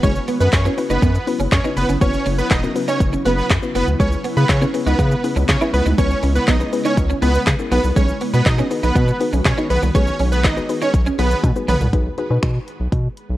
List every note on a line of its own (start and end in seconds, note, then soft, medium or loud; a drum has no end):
0.00 0.19 F#1 loud
0.00 7.68 C#3 medium
0.00 3.96 F#3 medium
0.00 0.11 G#3 medium
0.00 11.89 B3 medium
0.00 0.43 B3 medium
0.00 0.43 C#4 medium
0.00 0.13 C#4 medium
0.00 7.68 E4 medium
0.00 0.43 E4 medium
0.00 0.43 F#4 medium
0.00 0.43 B4 medium
0.00 0.12 C#5 loud
0.00 kick loud
0.00 closed hi-hat medium
0.00 shaker medium
0.15 shaker medium
0.28 0.36 B3 medium
0.28 open hi-hat medium
0.28 shaker medium
0.40 0.48 F#2 loud
0.40 0.50 B3 medium
0.40 0.49 B4 medium
0.40 muted clean electric guitar stroke soft
0.40 shaker medium
0.53 0.69 F#2 loud
0.53 0.62 C#4 medium
0.53 0.62 C#5 medium
0.53 kick loud
0.53 snare loud
0.53 clap loud
0.53 closed hi-hat medium
0.53 shaker medium
0.65 0.73 B3 medium
0.65 0.73 C#4 medium
0.65 0.73 E4 medium
0.65 0.73 F#4 medium
0.65 0.73 B4 medium
0.65 shaker medium
0.77 1.10 B3 medium
0.77 1.10 C#4 medium
0.77 1.10 E4 medium
0.77 1.10 F#4 medium
0.77 1.10 B4 medium
0.77 muted clean electric guitar stroke soft
0.77 open hi-hat medium
0.77 shaker medium
0.90 0.98 F#1 medium
0.90 1.25 B3 medium
0.90 0.98 D#4 medium
0.90 1.25 B4 medium
0.90 shaker medium
1.02 1.18 F#2 loud
1.02 1.11 B3 medium
1.02 kick loud
1.02 closed hi-hat medium
1.02 shaker medium
1.15 muted clean electric guitar stroke soft
1.15 shaker medium
1.27 1.51 B3 medium
1.27 1.51 C#4 medium
1.27 1.51 E4 medium
1.27 1.51 F#4 medium
1.27 1.51 B4 medium
1.27 open hi-hat medium
1.27 shaker medium
1.39 1.47 F#1 medium
1.39 1.48 C#4 medium
1.39 shaker medium
1.52 1.60 F#2 loud
1.52 1.62 C#4 medium
1.52 1.61 C#5 medium
1.52 kick loud
1.52 snare loud
1.52 clap loud
1.52 closed hi-hat medium
1.52 shaker medium
1.64 1.88 B3 medium
1.64 1.88 C#4 medium
1.64 1.73 D#4 medium
1.64 1.88 E4 medium
1.64 1.88 F#4 medium
1.64 1.89 B4 medium
1.64 shaker medium
1.77 1.85 F#1 loud
1.77 1.86 B3 medium
1.77 1.86 B4 medium
1.77 muted clean electric guitar stroke soft
1.77 open hi-hat medium
1.77 shaker medium
1.89 1.97 G1 medium
1.89 1.97 C#4 medium
1.89 shaker medium
2.01 2.17 F#1 loud
2.01 2.42 B3 medium
2.01 2.10 B3 loud
2.01 2.42 C#4 medium
2.01 2.20 C#4 medium
2.01 2.42 E4 medium
2.01 2.42 F#4 medium
2.01 2.42 B4 medium
2.01 2.20 C#5 loud
2.01 kick loud
2.01 closed hi-hat medium
2.01 shaker medium
2.14 muted clean electric guitar stroke soft
2.14 shaker medium
2.26 2.42 F#1 loud
2.26 2.34 C#4 medium
2.26 open hi-hat medium
2.26 shaker soft
2.39 2.48 B3 medium
2.39 2.48 B4 medium
2.39 shaker medium
2.51 2.67 E1 loud
2.51 2.59 B3 medium
2.51 2.61 D#4 medium
2.51 2.60 D#5 medium
2.51 kick loud
2.51 snare medium
2.51 clap loud
2.51 closed hi-hat medium
2.51 shaker medium
2.63 2.71 B3 medium
2.63 2.71 C#4 medium
2.63 2.72 E4 medium
2.63 2.72 F#4 medium
2.63 2.72 A#4 medium
2.63 muted clean electric guitar stroke soft
2.63 shaker medium
2.76 3.08 B3 medium
2.76 3.08 C#4 medium
2.76 3.08 E4 medium
2.76 3.08 F#4 medium
2.76 3.08 B4 medium
2.76 open hi-hat medium
2.76 shaker medium
2.88 2.98 C#4 medium
2.88 2.96 D#4 medium
2.88 2.97 C#5 medium
2.88 shaker medium
3.01 3.17 F#1 loud
3.01 muted clean electric guitar stroke soft
3.01 kick loud
3.01 closed hi-hat medium
3.01 shaker medium
3.13 3.21 C#4 medium
3.13 shaker medium
3.25 3.41 F#1 loud
3.25 3.49 B3 medium
3.25 3.34 B3 medium
3.25 3.44 B3 medium
3.25 3.49 C#4 medium
3.25 3.50 E4 medium
3.25 3.50 F#4 medium
3.25 3.44 B4 medium
3.25 3.50 B4 medium
3.25 open hi-hat medium
3.25 shaker medium
3.38 shaker medium
3.50 3.58 F#2 loud
3.50 kick loud
3.50 snare loud
3.50 clap loud
3.50 closed hi-hat medium
3.50 shaker medium
3.62 3.87 B3 medium
3.62 3.87 C#4 medium
3.62 3.87 E4 medium
3.62 3.87 F#4 medium
3.62 3.87 B4 medium
3.62 shaker medium
3.75 3.83 F#1 medium
3.75 3.83 B3 medium
3.75 3.85 B3 medium
3.75 3.84 B4 medium
3.75 open hi-hat medium
3.75 shaker medium
3.88 3.95 D2 medium
3.88 shaker medium
4.00 4.16 C#2 loud
4.00 11.89 G#3 medium
4.00 4.08 G#3 medium
4.00 4.40 B3 medium
4.00 4.40 C#4 medium
4.00 4.09 C#4 medium
4.00 4.40 E4 medium
4.00 4.40 G#4 medium
4.00 4.40 B4 medium
4.00 4.09 C#5 loud
4.00 kick loud
4.00 closed hi-hat medium
4.00 shaker medium
4.12 shaker medium
4.25 4.33 B3 medium
4.25 open hi-hat medium
4.25 shaker soft
4.37 4.45 C#3 loud
4.37 4.47 B3 medium
4.37 4.46 B4 medium
4.37 muted clean electric guitar stroke soft
4.37 shaker medium
4.49 4.65 C#3 loud
4.49 4.59 C#4 medium
4.49 4.59 C#5 medium
4.49 kick loud
4.49 snare loud
4.49 clap loud
4.49 closed hi-hat medium
4.49 shaker medium
4.62 4.70 B3 medium
4.62 4.70 C#4 medium
4.62 4.70 E4 medium
4.62 4.70 G#4 medium
4.62 4.70 B4 medium
4.62 shaker medium
4.74 5.06 B3 medium
4.74 5.06 C#4 medium
4.74 5.06 E4 medium
4.74 5.06 G#4 medium
4.74 5.06 B4 medium
4.74 muted clean electric guitar stroke soft
4.74 open hi-hat medium
4.74 shaker medium
4.87 4.95 C#2 loud
4.87 5.22 B3 medium
4.87 4.95 D#4 medium
4.87 5.22 B4 medium
4.87 shaker medium
4.99 5.15 C#3 loud
4.99 5.07 B3 medium
4.99 kick loud
4.99 closed hi-hat medium
4.99 shaker medium
5.11 muted clean electric guitar stroke soft
5.11 shaker medium
5.24 5.48 B3 medium
5.24 5.48 C#4 medium
5.24 5.48 E4 medium
5.24 5.48 G#4 medium
5.24 5.48 B4 medium
5.24 open hi-hat medium
5.24 shaker medium
5.36 5.44 C#2 loud
5.36 5.44 C#4 medium
5.36 shaker medium
5.49 5.57 C#3 loud
5.49 5.58 C#4 medium
5.49 5.58 C#5 medium
5.49 kick loud
5.49 snare medium
5.49 clap loud
5.49 closed hi-hat medium
5.49 shaker medium
5.61 5.85 B3 medium
5.61 5.85 C#4 medium
5.61 5.69 E4 medium
5.61 5.85 E4 medium
5.61 5.85 G#4 medium
5.61 5.85 B4 medium
5.61 shaker medium
5.73 5.81 C#2 medium
5.73 5.83 B3 medium
5.73 5.83 B4 medium
5.73 muted clean electric guitar stroke soft
5.73 open hi-hat medium
5.73 shaker medium
5.86 5.94 D2 medium
5.86 5.94 D#4 medium
5.86 shaker medium
5.98 6.14 C#2 loud
5.98 6.38 B3 medium
5.98 6.38 C#4 medium
5.98 6.06 C#4 medium
5.98 6.17 C#4 medium
5.98 6.38 E4 medium
5.98 6.38 G#4 medium
5.98 6.38 B4 medium
5.98 6.16 C#5 loud
5.98 kick loud
5.98 closed hi-hat medium
5.98 shaker medium
6.10 muted clean electric guitar stroke soft
6.10 shaker medium
6.23 6.39 C#2 loud
6.23 6.31 C#4 medium
6.23 open hi-hat medium
6.23 shaker medium
6.35 6.45 B3 medium
6.35 6.45 B4 medium
6.35 shaker medium
6.48 6.64 B1 loud
6.48 6.56 B3 medium
6.48 6.57 D#4 medium
6.48 6.57 D#5 medium
6.48 kick loud
6.48 snare loud
6.48 clap loud
6.48 closed hi-hat medium
6.48 shaker medium
6.60 6.68 B3 medium
6.60 6.68 C#4 medium
6.60 6.68 E4 medium
6.60 6.68 G#4 medium
6.60 6.68 B4 medium
6.60 muted clean electric guitar stroke soft
6.60 shaker medium
6.72 7.05 B3 medium
6.72 7.05 C#4 medium
6.72 7.05 E4 medium
6.72 7.05 G#4 medium
6.72 7.05 B4 medium
6.72 open hi-hat medium
6.72 shaker medium
6.85 6.95 C#4 medium
6.85 6.93 D#4 medium
6.85 6.94 C#5 medium
6.85 shaker medium
6.97 7.13 C#2 loud
6.97 muted clean electric guitar stroke soft
6.97 kick loud
6.97 closed hi-hat medium
6.97 shaker medium
7.10 7.18 C#4 medium
7.10 shaker medium
7.22 7.38 C#2 medium
7.22 7.46 B3 medium
7.22 7.30 B3 medium
7.22 7.41 B3 medium
7.22 7.46 C#4 medium
7.22 7.46 E4 medium
7.22 7.46 G#4 medium
7.22 7.40 B4 medium
7.22 7.46 B4 medium
7.22 open hi-hat medium
7.22 shaker medium
7.34 shaker medium
7.47 7.55 C#3 loud
7.47 kick loud
7.47 snare loud
7.47 clap loud
7.47 closed hi-hat medium
7.47 shaker medium
7.59 7.70 B3 medium
7.59 7.72 C#4 medium
7.59 7.72 E4 medium
7.59 7.71 G#4 medium
7.59 7.72 A#4 medium
7.59 shaker medium
7.71 7.80 B1 loud
7.71 11.89 D#3 medium
7.71 8.41 B3 medium
7.71 7.80 B3 medium
7.71 7.81 B3 medium
7.71 8.41 D#4 medium
7.71 8.41 F#4 medium
7.71 9.68 F#4 medium
7.71 8.41 G#4 medium
7.71 7.81 B4 medium
7.71 8.41 B4 medium
7.71 open hi-hat medium
7.71 shaker medium
7.84 7.92 C2 medium
7.84 shaker medium
7.96 8.12 B1 loud
7.96 8.05 G#3 medium
7.96 8.06 C#4 medium
7.96 8.06 C#5 loud
7.96 kick loud
7.96 closed hi-hat medium
7.96 shaker medium
8.09 shaker medium
8.21 8.30 B3 medium
8.21 open hi-hat medium
8.21 shaker soft
8.34 8.42 B2 loud
8.34 8.43 B3 medium
8.34 8.43 B4 medium
8.34 muted clean electric guitar stroke soft
8.34 shaker medium
8.46 8.62 B2 loud
8.46 8.56 D#4 medium
8.46 8.55 D#5 medium
8.46 kick loud
8.46 snare loud
8.46 clap loud
8.46 closed hi-hat medium
8.46 shaker medium
8.58 8.66 B3 medium
8.58 8.67 C#4 medium
8.58 8.67 D#4 medium
8.58 8.67 F#4 medium
8.58 8.67 G#4 medium
8.58 8.67 B4 medium
8.58 shaker medium
8.71 9.03 B3 medium
8.71 9.03 D#4 medium
8.71 9.03 F#4 medium
8.71 9.03 G#4 medium
8.71 9.03 B4 medium
8.71 muted clean electric guitar stroke soft
8.71 open hi-hat medium
8.71 shaker medium
8.83 8.91 B1 loud
8.83 9.19 B3 medium
8.83 8.92 D#4 medium
8.83 9.18 B4 medium
8.83 shaker medium
8.96 9.12 B2 loud
8.96 9.04 B3 medium
8.96 kick loud
8.96 closed hi-hat medium
8.96 shaker medium
9.08 muted clean electric guitar stroke soft
9.08 shaker medium
9.20 9.45 B3 medium
9.20 9.45 D#4 medium
9.20 9.45 F#4 medium
9.20 9.45 G#4 medium
9.20 9.45 B4 medium
9.20 open hi-hat medium
9.20 shaker medium
9.33 9.41 B1 loud
9.33 9.41 C#4 medium
9.33 shaker medium
9.45 9.53 B2 loud
9.45 9.55 C#4 medium
9.45 9.54 C#5 medium
9.45 kick loud
9.45 snare loud
9.45 clap loud
9.45 closed hi-hat medium
9.45 shaker medium
9.57 9.82 B3 medium
9.57 9.82 D#4 medium
9.57 9.66 D#4 medium
9.57 9.82 F#4 medium
9.57 9.82 G#4 medium
9.57 9.82 B4 medium
9.57 shaker medium
9.70 9.78 B1 medium
9.70 9.80 B3 medium
9.70 11.91 G#4 medium
9.70 9.79 B4 medium
9.70 muted clean electric guitar stroke soft
9.70 open hi-hat medium
9.70 shaker medium
9.83 9.91 C2 loud
9.83 9.91 B3 medium
9.83 shaker medium
9.95 10.11 B1 loud
9.95 10.03 G#3 medium
9.95 10.35 B3 medium
9.95 10.14 C#4 medium
9.95 10.35 D#4 medium
9.95 10.35 F#4 medium
9.95 10.35 G#4 medium
9.95 10.35 B4 medium
9.95 10.13 C#5 loud
9.95 kick loud
9.95 closed hi-hat medium
9.95 shaker medium
10.07 muted clean electric guitar stroke soft
10.07 shaker medium
10.19 10.46 B1 loud
10.19 10.28 C#4 medium
10.19 open hi-hat medium
10.19 shaker soft
10.32 10.42 B3 medium
10.32 10.41 B4 medium
10.32 shaker medium
10.44 10.60 G#1 medium
10.44 10.53 B3 medium
10.44 10.54 D#4 medium
10.44 10.54 D#5 medium
10.44 kick loud
10.44 snare loud
10.44 clap loud
10.44 closed hi-hat medium
10.44 shaker medium
10.57 10.65 B3 medium
10.57 10.65 D#4 medium
10.57 10.65 F#4 medium
10.57 10.65 G#4 medium
10.57 10.65 B4 medium
10.57 muted clean electric guitar stroke medium
10.57 shaker medium
10.69 11.01 B3 medium
10.69 11.01 D#4 medium
10.69 11.01 F#4 medium
10.69 11.02 G#4 medium
10.69 11.02 B4 medium
10.69 open hi-hat medium
10.69 shaker medium
10.82 10.91 C#4 medium
10.82 10.90 D#4 medium
10.82 10.91 C#5 medium
10.82 shaker medium
10.94 11.10 B1 loud
10.94 muted clean electric guitar stroke soft
10.94 kick loud
10.94 closed hi-hat medium
10.94 shaker medium
11.06 11.15 C#4 medium
11.06 shaker medium
11.19 11.35 B1 loud
11.19 11.43 B3 medium
11.19 11.27 B3 medium
11.19 11.38 B3 medium
11.19 11.43 D#4 medium
11.19 11.43 F#4 medium
11.19 11.43 G#4 medium
11.19 11.37 B4 medium
11.19 11.43 B4 medium
11.19 open hi-hat medium
11.19 shaker medium
11.31 shaker medium
11.44 11.52 B2 loud
11.44 kick loud
11.44 closed hi-hat medium
11.44 high tom medium
11.44 shaker medium
11.56 11.80 B3 medium
11.56 11.80 D#4 medium
11.56 11.80 F#4 medium
11.56 11.80 G#4 medium
11.56 11.80 B4 medium
11.56 shaker medium
11.69 11.76 B1 loud
11.69 11.77 B3 medium
11.69 11.78 B3 medium
11.69 11.78 B4 medium
11.69 mid tom loud
11.69 open hi-hat medium
11.69 shaker medium
11.81 11.89 C2 loud
11.81 floor tom loud
11.81 shaker medium
11.93 12.09 B1 loud
11.93 12.09 D#4 medium
11.93 12.09 F#4 medium
11.93 12.09 G#4 medium
11.93 12.09 B4 loud
11.93 kick loud
11.93 closed hi-hat medium
12.18 12.26 D#4 medium
12.18 12.26 F#4 medium
12.18 12.26 G#4 medium
12.18 12.26 B4 loud
12.18 closed hi-hat soft
12.30 12.38 B2 medium
12.30 12.95 D#4 medium
12.30 12.95 F#4 medium
12.30 12.95 G#4 medium
12.30 12.95 B4 loud
12.43 12.59 B2 loud
12.43 finger snap loud
12.43 kick loud
12.43 closed hi-hat medium
12.68 closed hi-hat medium
12.80 12.88 B1 medium
12.92 13.08 B2 loud
12.92 kick loud
12.92 closed hi-hat medium
13.17 closed hi-hat medium
13.30 13.37 B1 medium